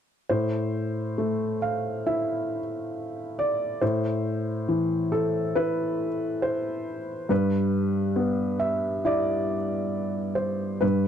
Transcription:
0.29 A2 C5
1.18 A3
1.62 F5
2.06 E4 E5
3.39 D5
3.81 A2 C5
4.69 E3
5.12 A4
5.55 E4 B4 E5
6.42 C5
7.29 G2 B4
8.16 B3
8.59 E5
9.05 E4 D5 E5
10.35 C5
10.81 G2 B4

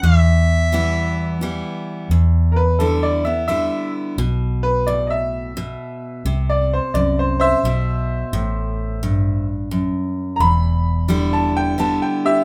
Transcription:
0.02 E2 E5
0.72 E3 G3 B3 E4
1.41 E3 G3 B3 E4
2.09 E2
2.52 A#4
2.56 B4
2.79 D3 G3 B3 E4 A4
3.03 D5
3.25 B3 E4 E5
3.48 D3 G3 B3 E4 E5
4.18 B1 B2
4.63 B4
4.87 A2 D5
5.07 D#5 E5
5.57 B2
6.25 C2 C3
6.50 D5
6.73 C5
6.94 C2 F#2 D5
7.19 C5
7.40 C5 E5
7.63 B1 B2
8.33 A1 A2
9.03 G2
9.71 F#2
10.36 E1 A#5
10.40 E2 B5
11.08 D3 G3 B3 E4
11.33 A5
11.57 G5
11.78 D3 G3 B3 E4 A5
12.02 G5
12.25 G4 E5

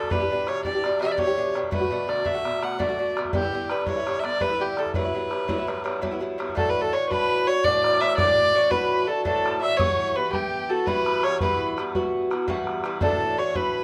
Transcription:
Already playing: D3 A3 F#4 A4
0.03 bodhran
0.10 B2 E3 D4 G4 B4, bodhran
0.20 E3 D4 G4
0.30 B2 E3 D4 G4
0.47 B2 E3 D4 G4 C#5, bodhran
0.64 B2 E3 D4 G4 D5, bodhran
0.74 E3 D4 G4
0.84 B2 E3 D4 G4, bodhran
1.01 B2 E3 D4 G4 E5, bodhran
1.11 D5
1.17 B2 E3 D4 G4 C#5, bodhran
1.27 E3 D4 G4
1.37 B2 E3 D4 G4
1.54 B2 E3 D4 G4, bodhran
1.63 bodhran
1.71 B2 D3 A3 F#4 B4, bodhran
1.81 D3 A3 F#4, bodhran
1.90 B2 D3 A3 F#4
2.07 B2 D3 A3 F#4 D5, bodhran
2.25 B2 D3 A3 F#4 E5, bodhran
2.34 D3 A3 F#4
2.44 B2 D3 A3 F#4, bodhran
2.61 B2 D3 A3 F#4 F#5, bodhran
2.79 B2 D3 A3 F#4 D5, bodhran
2.89 D3 A3 F#4
2.98 B2 D3 A3 F#4
3.17 B2 D3 A3 F#4, bodhran
3.25 bodhran
3.33 G2 D3 B3 E4 G4, bodhran
3.42 D3 B3 E4, bodhran
3.52 G2 D3 B3 E4
3.70 G2 D3 B3 E4 B4, bodhran
3.87 G2 D3 B3 E4 C#5, bodhran
3.97 D3 B3 E4
4.06 G2 D3 B3 E4, bodhran
4.20 G2 E5
4.24 D3 B3 E4 D5, bodhran
4.40 G2 D3 B3 E4 B4, bodhran
4.50 D3 B3 E4
4.59 G2 D3 B3 E4 G4
4.77 G2 D3 B3 E4 A4, bodhran
4.86 bodhran
4.94 G2 F#3 B3 E4 B4, bodhran
5.05 F#3 B3 E4
5.13 G2 F#3 B3 E4
5.30 G2 F#3 B3 E4, bodhran
5.48 G2 F#3 B3 E4, bodhran
5.58 F#3 B3 E4
5.67 G2 F#3 B3 E4, bodhran
5.84 G2 F#3 B3 E4, bodhran
6.02 G2 F#3 B3 E4, bodhran
6.11 F#3 B3 E4
6.20 G2 F#3 B3 E4
6.38 G2 F#3 B3 E4, bodhran
6.49 bodhran
6.55 A2 E3 D4 F#4 A4 A5, bodhran
6.69 B4
6.77 A4, bodhran
6.83 A5
6.93 A2 E3 D4 F#4 C#5 C#6
7.09 A2 E3 D4 F#4 B4 B5, bodhran
7.47 E3 D4 F#4 C#5 C#6
7.64 A2 E3 D4 F#4 D5 D6, bodhran
7.84 bodhran
8.00 A2 E3 D4 F#4 E5, bodhran
8.12 E6
8.17 A2 E3 D4 F#4 D5 D6, bodhran
8.38 bodhran
8.54 A2 E3 D4 F#4 C#6
8.70 A2 E3 D4 F#4 B4 B5, bodhran
8.92 B5
9.07 E3 D4 F#4 A4 A5
9.25 A2 E3 D4 F#4 A4 A5, bodhran
9.46 bodhran
9.61 A2 E3 D4 F#4 E5 E6
9.77 G2 E3 B3 F#4 C#5 C#6, bodhran
10.00 C#6, bodhran
10.15 G2 E3 B3 F#4 B4 B5
10.32 G2 E3 B3 G4 G5, bodhran
10.69 E3 B3 F#4 A4 A5
10.86 G2 E3 B3 F#4 B4 B5, bodhran
11.06 bodhran
11.23 G2 E3 B3 F#4 C#5 C#6, bodhran
11.40 G2 E3 B3 F#4 B4 B5, bodhran
11.61 bodhran
11.78 G2 E3 B3 F#4, bodhran
11.95 G2 E3 B3 F#4, bodhran
12.31 E3 B3 F#4, bodhran
12.48 G2 E3 B3 F#4, bodhran
12.67 bodhran
12.84 G2 E3 B3 F#4, bodhran
13.01 A2 E3 D4 F#4 A4 A5, bodhran
13.21 bodhran
13.37 A2 E3 D4 F#4 C#5 C#6
13.54 A2 E3 D4 F#4 B4 B5, bodhran

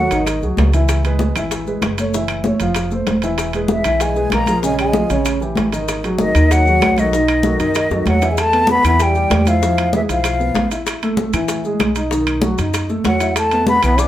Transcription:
Already playing: F#3 F#5
0.10 G#1 D#3 D#4 D#5, high bongo, high conga, high timbale, maracas
0.26 high bongo, high conga, high timbale, claves, maracas
0.42 C2 F#3 F#4 G#4, high bongo, high conga, maracas
0.57 C#2, high bongo, low bongo, high conga, high timbale, low timbale, maracas
0.73 E3 E4 E5, high bongo, high timbale, maracas
0.88 high bongo, high conga, high timbale, claves, maracas
1.03 G#3 G#4 B4, high conga, high timbale, maracas
1.19 high bongo, high conga, maracas
1.35 G#1 E3 E4 E5, high bongo, high conga, high timbale, claves, maracas
1.51 high bongo, high conga, high timbale, maracas
1.66 G#3 G#4 B4, high bongo, high conga, maracas
1.82 F#1, high bongo, low bongo, high conga, high timbale, claves, maracas
1.98 A3 A4 C#5, high bongo, high timbale, maracas
2.13 E3 E4 E5, high bongo, high conga, maracas
2.28 high conga, high timbale, claves, maracas
2.44 A3 A4 C#5, high bongo, high conga, maracas
2.60 F1 F3 F4 F5, high bongo, high conga, high timbale, maracas
2.75 high bongo, high conga, high timbale, claves, maracas
2.90 A3 A4 C5, high bongo, high conga, maracas
3.07 E1, high bongo, low bongo, high conga, high timbale, maracas
3.22 E3 E4 E5, high bongo, high conga, high timbale, maracas
3.38 high bongo, high conga, high timbale, claves, maracas
3.53 G#3 G#4 B4, high conga, high timbale, maracas
3.68 E3 E5, high bongo, high conga, maracas
3.84 B1 E3 E4 E5, high bongo, high conga, high timbale, claves, maracas
4.00 G#3 G#5, high bongo, high conga, high timbale, maracas
4.15 G#3 G#4 B4, high bongo, high conga, maracas
4.30 A#1 A#3 A#5, high bongo, low bongo, high conga, high timbale, claves, maracas
4.46 F3 F4 G#4, high bongo, high conga, high timbale, maracas
4.62 C#3 G#3 C#4 C#5 G#5, high bongo, high conga, maracas
4.78 G#3 G#5, high conga, high timbale, claves, maracas
4.93 F3 F4 G#4, high bongo, high conga, maracas
5.09 A1 C#3 C#4 C#5, high bongo, high conga, high timbale, maracas
5.25 high bongo, high conga, high timbale, claves, maracas
5.40 E3 E4 G4, high bongo, high conga, maracas
5.55 G#1, high bongo, low bongo, high conga, high timbale, maracas
5.72 D#3 D#4 D#5, high bongo, high conga, high timbale, maracas
5.88 high bongo, high conga, high timbale, claves, maracas
6.03 F#3 F#4 G#4, high conga, high timbale, maracas
6.18 D#3 D#5, high bongo, high conga, maracas
6.35 D#2 D#3 D#4 D#5, high bongo, high timbale, claves, maracas
6.50 F#3 F#5, high bongo, high conga, high timbale, maracas
6.66 F#3 F#4 G#4, high bongo, high conga, maracas
6.81 B1, high bongo, low bongo, high conga, high timbale, low timbale, claves, maracas
6.97 D#3 F#3 F#4 A4 D#5, high bongo, high conga, high timbale, maracas
7.13 D#3 D#4 D#5, high bongo, high conga, maracas
7.28 high conga, high timbale, claves, maracas
7.43 F#3 F#4 A4, high bongo, high conga, maracas
7.59 F#2 D#3 D#4 D#5, high bongo, high conga, high timbale, maracas
7.75 high bongo, high conga, high timbale, claves, maracas
7.90 F#2 F#3 F#4 A4, high bongo, high conga, maracas
8.06 E2 F#3 F#5, high conga, high timbale, low timbale, maracas
8.21 E3 E4 E5, low bongo, high conga, high timbale, maracas
8.31 G#3 G#5
8.37 A3 A5, high bongo, high conga, high timbale, claves, maracas
8.52 B3 B4, high conga, high timbale, maracas
8.67 B3, high bongo, high conga, maracas
8.71 B5
8.83 E2 E3 B3 E4, high bongo, high conga, high timbale, claves, maracas
8.87 B5
8.99 G3 G5, high bongo, high conga, high timbale, maracas
9.15 G3 G4, high bongo, high conga, maracas
9.30 E2, high bongo, low bongo, high conga, high timbale, low timbale, claves, maracas
9.46 F3 E4 E5 F5, high bongo, high conga, high timbale, maracas
9.62 F3 E4, high bongo, maracas
9.77 high conga, high timbale, claves, maracas
9.93 E3 G#3 G#4 E5, high bongo, high conga, maracas
10.08 B1 F3 E4 F5, high bongo, high conga, high timbale, maracas
10.24 high bongo, high conga, high timbale, claves, maracas
10.39 B3 B4, high bongo, high conga, maracas
10.54 A1, high bongo, low bongo, high conga, high timbale, maracas
10.70 E4 E5, high bongo, high conga, high timbale, maracas
10.86 high bongo, high conga, high timbale, claves, maracas
11.02 A3 A4, high conga, high timbale, maracas
11.17 high bongo, high conga, maracas
11.33 A2 E3 E4, high bongo, high conga, high timbale, claves, maracas
11.48 high bongo, high conga, high timbale, maracas
11.64 G#3 G#4, high bongo, high conga, maracas
11.80 B1, high bongo, low bongo, high conga, high timbale, claves, maracas
11.95 D#4 D#5, high bongo, high timbale, maracas
12.11 D#3 D#4, high bongo, high conga, maracas
12.26 high conga, high timbale, claves, maracas
12.42 F#3 F#4, high bongo, high conga, maracas
12.58 F#2 D#4 D#5, high bongo, high conga, high timbale, maracas
12.74 high bongo, high conga, high timbale, claves, maracas
12.89 A3 A4, high bongo, high conga, maracas
13.04 E2 F#3 F#5, high bongo, low bongo, high conga, high timbale, maracas
13.20 E4 E5, high bongo, high conga, high timbale, maracas
13.36 A3 A5, high bongo, high conga, high timbale, claves, maracas
13.51 B3 B4, high conga, high timbale, maracas
13.67 B3 B5, high bongo, high conga, maracas
13.82 B1 E3 B3 E4 B5, high bongo, high conga, high timbale, claves, maracas
13.98 D4 D6, high bongo, high conga, high timbale, maracas

